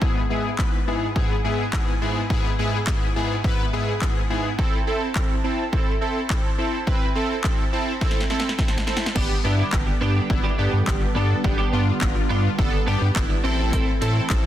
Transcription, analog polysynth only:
0.01 G#2 B3 E4 G#4
0.30 G#2 B3 E4 G#4
0.59 G#2 B3 E4 B4
0.87 G#2 B3 E4 G#4
1.16 G#2 B3 E4 G#4
1.44 G#2 B3 E4 G#4
1.73 G#2 B3 E4 G#4
2.01 G#2 B3 E4 G#4
2.30 G#2 B3 E4 G#4
2.59 G#2 B3 E4 G#4
2.87 B3 E4
3.16 G#2 B3 E4 G#4
3.44 G#2 B3 E4 B4
3.73 G#2 B3 E4 G#4
4.02 G#2 E4 G#4
4.30 G#2 B3 E4 G#4
4.58 C4 E4 A4
4.87 C4 E4 A4
5.15 C4 A4
5.44 C4 E4 A4
5.72 C4 E4 A4
6.01 C4 E4 A4
6.30 C4 E4 A4
6.58 C4 E4 A4
6.87 C4 E4 B4
7.15 C4 E4 A4
7.44 C4 E4 A4
7.73 C4 E4 A4
8.01 C4 E4 A4
8.30 C4 E4 A4
8.58 C4 E4 A4
8.87 C4 E4 A4
9.15 B3 D4 G4
9.44 B3 D4 E4
9.72 B3 D4 G4
10.01 B3 D4 G4
10.30 B3 D4 E4
10.58 B3 D4 G4
10.87 B3 D4 G4
11.16 B3 D4 A4
11.44 B3 D4 G4
11.73 B3 D4 F4
12.01 B3 D4 F4
12.30 B3 D4 F4
12.58 B3 D4 A4
12.87 B3 D4 G4
13.15 B3 D4 E4
13.44 C4 E4 A4
14.01 C4 E4 A4
14.30 C4 E4 A4

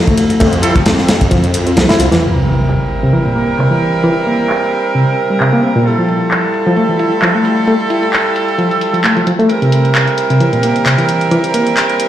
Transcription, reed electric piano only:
0.07 A3
0.40 A3
0.63 E4
1.31 F3
1.67 C4
1.77 F3
1.89 E4
2.00 F4
2.12 E3
2.34 C3
3.03 C3
3.13 E3
3.25 A#2
3.36 A#3
3.58 C3
3.71 E3
4.04 E3
4.27 A#3
4.95 C3
5.30 G3
5.40 C3
5.53 A#3
5.63 C4
5.76 A#2
5.99 F3
6.66 F3
6.77 A3
6.89 E3
7.00 E4
7.22 F3
7.35 A3
7.68 A3
7.90 E4
8.58 F3
8.94 F3
9.04 A3
9.17 F3
9.27 F3
9.39 A3
9.62 C3
10.30 C3
10.40 E3
10.53 A#2
10.63 A#3
10.86 C3
10.98 E3
11.31 E3
11.54 A#3

